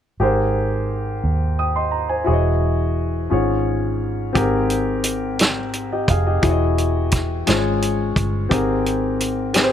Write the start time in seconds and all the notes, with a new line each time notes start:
0.20 G#1 G#2 G4 G#4 A#4 C5
1.24 D#2
1.59 G5 D#6
1.76 D#5 C6
1.91 A#5
2.09 C5 G#5
2.24 E1 E3 E4 F#4 G#4 C#5
2.33 D#5
3.30 G#1 G#2 C#4 F4 G#4 C#5
4.33 G#1 G#2 C4 G4 G#4 A#4, kick, closed hi-hat
4.70 closed hi-hat
5.04 closed hi-hat
5.39 snare, closed hi-hat
5.73 closed hi-hat
5.92 G4 D#5
6.08 F1 G#4 F5, kick, closed hi-hat
6.27 G4 D#5
6.42 E1 E3 E4 F#4 G#4 C#5, kick, closed hi-hat
6.51 D#5
6.78 closed hi-hat
7.11 kick, snare, closed hi-hat
7.46 G#1 G#3 C#4 F4 G#4 C5, snare, closed hi-hat
7.55 C#5
7.82 closed hi-hat
8.16 G1, kick, closed hi-hat
8.49 G#1 G#2 C4 G4 G#4 A#4, kick, closed hi-hat
8.86 closed hi-hat
9.20 closed hi-hat
9.54 C4 G4 G#4 B4, snare, closed hi-hat
9.63 C5